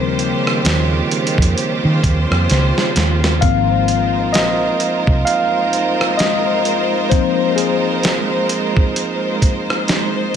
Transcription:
Already playing: D#2 C#3 D#3 F3 G3 A#3 C4 F4 G4 A#4 C5
0.19 closed hi-hat
0.47 cross-stick
0.65 D#2, snare, closed hi-hat
1.11 C5, closed hi-hat
1.27 closed hi-hat
1.38 F2, kick
1.42 closed hi-hat
1.58 closed hi-hat
1.85 D#3
2.04 D#2, kick, closed hi-hat
2.31 F2, cross-stick
2.50 C#2, snare, closed hi-hat
2.78 snare
2.96 D#2, snare, closed hi-hat
3.24 snare
3.41 G#1 F3 G#3 A#3 C4 D#4 A#4 C5 F5, kick, closed hi-hat
3.88 closed hi-hat
4.33 A#1 D#5, snare, closed hi-hat
4.80 closed hi-hat
5.07 C2, kick
5.25 F5, closed hi-hat
5.73 closed hi-hat
6.01 cross-stick
6.17 D#5, snare, closed hi-hat
6.65 closed hi-hat
7.10 F3 A#3 C4 C5, kick, closed hi-hat
7.56 G#4, closed hi-hat
8.03 snare, closed hi-hat
8.49 closed hi-hat
8.77 kick
8.96 closed hi-hat
9.42 kick, closed hi-hat
9.70 cross-stick
9.88 snare, closed hi-hat

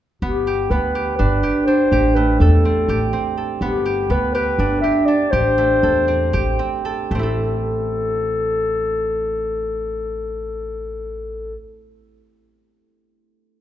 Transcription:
0.22 G1 B3 G4
0.47 G4
0.70 D2 B3 B4
0.95 G4
1.18 G1 D4 B4
1.43 G4
1.66 D4 C5
1.92 A1 G4
2.15 A3 B4
2.40 E2 A4
2.65 C4
2.88 A1 G4
3.13 C4
3.37 A4
3.61 G1 B3 G4
3.85 G4
4.10 D2 B3 B4
4.35 G4 B4
4.58 G1 D4
4.81 G4 E5
5.05 D4 D5
5.31 A1 G4 C5
5.58 A3
5.83 E2 A4
6.08 C4
6.33 A1 G4
6.59 C4
6.85 A4
7.11 A1 A3 C4 A4
7.19 E4 A4

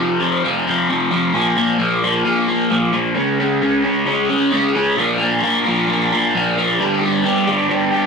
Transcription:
0.00 F2 C3 F3
0.20 F2 C3 F3
0.44 F2 C3 F3
0.67 F2 C3 F3
0.89 F2 C3 F3
1.11 F2 C3 F3
1.34 A#2 F3 A#3
1.57 A#2 F3 A#3
1.78 A#2 F3 A#3
2.03 A#2 F3 A#3
2.25 A#2 F3 A#3
2.47 A#2 F3 A#3
2.70 A#2 F3 A#3
2.93 A#2 F3 A#3
3.15 C#3 G#3 C#4
3.39 C#3 G#3 C#4
3.62 C#3 G#3 C#4
3.83 C#3 G#3 C#4
4.05 C#3 G#3 C#4
4.29 C#3 G#3 C#4
4.52 C#3 G#3 C#4
4.75 C#3 G#3 C#4
4.96 A#2 F3 A#3 D4 F4 A#4
5.18 A#3 D4 F4 A#4
5.42 A#3 D4 F4 A#4
5.66 A#2 F3 A#3 D4 F4 A#4
5.88 A#3 D4 F4 A#4
6.12 A#3 D4 F4 A#4
6.34 A#2 F3 A#3 D4 F4 A#4
6.58 A#3 D4 F4 A#4
6.78 G2 D3 G3 B3 D4 G4
7.01 G3 B3 D4 G4
7.24 G3 B3 D4 G4
7.47 G2 D3 G3 B3 D4 G4
7.69 G3 B3 D4 G4
7.92 G3 B3 D4 G4

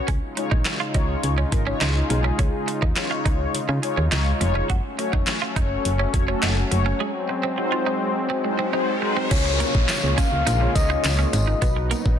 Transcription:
0.08 C#2 C#3 G#3 C#4 D#4 F4, kick, closed hi-hat
0.37 G#3 D#4 F4 C#5, muted clean electric guitar stroke, closed hi-hat
0.51 A#1 D#4, kick
0.65 muted clean electric guitar stroke, snare, clap, closed hi-hat
0.80 F4
0.94 C#2 G#3 D#4 F4 C#5, kick, closed hi-hat
1.23 C#2, closed hi-hat
1.38 C#4
1.52 G#1 G#3 D#4 F4 A#4, muted clean electric guitar stroke, kick, closed hi-hat
1.67 G#3 C#4 D#4 F4 C#5
1.81 C#2 D#4, snare, clap, closed hi-hat
2.10 B1 G#3 D#4 F4 G#4, muted clean electric guitar stroke, closed hi-hat
2.24 C#4
2.39 C#2 C#4, kick, closed hi-hat
2.68 muted clean electric guitar stroke, closed hi-hat
2.82 D#2 D#4, kick
2.96 G#3 D#4 F4 C#5, muted clean electric guitar stroke, snare, clap, closed hi-hat
3.11 F4
3.25 C#2 D#4, kick, closed hi-hat
3.54 C#3, closed hi-hat
3.69 C#3 C#4
3.83 G#3 D#4 F4 C#5, muted clean electric guitar stroke, closed hi-hat
3.97 D#2 C#4
4.12 C#2 G#3 D#4 F4 C#5, snare, clap, closed hi-hat
4.41 F1 G#3 D#4 F4 C#5, muted clean electric guitar stroke, closed hi-hat
4.55 C#4
4.70 F#1 F#3 A3 C#4 F#4, kick, closed hi-hat
4.99 A3 C#4 F#4 C#5, muted clean electric guitar stroke, closed hi-hat
5.13 F1 D#4, kick
5.27 muted clean electric guitar stroke, snare, clap, closed hi-hat
5.42 F4
5.56 F#1 A3 C#4 D#4 F#4 C#5, kick, closed hi-hat
5.85 F#1, closed hi-hat
5.99 C#4
6.14 F1 A3 C#4 F#4 C#5, muted clean electric guitar stroke, kick, closed hi-hat
6.28 A3 C#4 F#4 A4
6.43 F#1 D#4, snare, clap, closed hi-hat
6.71 F#1 A3 C#4 F#4 C#5, muted clean electric guitar stroke, closed hi-hat
6.86 C#4
7.00 G#3 C4, riser
7.29 muted clean electric guitar stroke
7.43 C4
7.58 G#3 D#4 F#4 C5, muted clean electric guitar stroke
7.72 F4
7.87 D#4
8.30 C4
8.44 G#3 D#4 F#4 C5, muted clean electric guitar stroke
8.59 C4
8.73 G#3 D#4 F#4 C5
9.02 G#3 D#4 F#4 C5, muted clean electric guitar stroke
9.17 C4
9.31 C#2 C#3 G#3 A#3 C#4 F4 G#4 C#5, kick, closed hi-hat, crash, tambourine, downlifter
9.46 muted clean electric guitar stroke
9.60 A#3, closed hi-hat, tambourine
9.75 A#1, kick
9.89 snare, clap, closed hi-hat, tambourine
10.03 C#2 A#3 C#4 F4 G#4 C#5
10.18 C#4 F5, kick, closed hi-hat, tambourine
10.32 C#2
10.47 A#1 D#4, closed hi-hat, tambourine
10.61 A#3 C#4 F4 G#4 C#5, muted clean electric guitar stroke
10.75 C#2 A#3 C#4 F4 G#4 C#5 D#5, kick, closed hi-hat, tambourine
10.90 D#4
11.04 C#2, snare, clap, closed hi-hat, tambourine
11.19 C#4
11.33 G#1 D#5, muted clean electric guitar stroke, closed hi-hat, tambourine
11.47 D#4
11.62 B1 F#3 B3 D#4 F#4 B4, kick, closed hi-hat, tambourine
11.76 muted clean electric guitar stroke
11.91 A#3, closed hi-hat, tambourine
12.06 A#1, kick

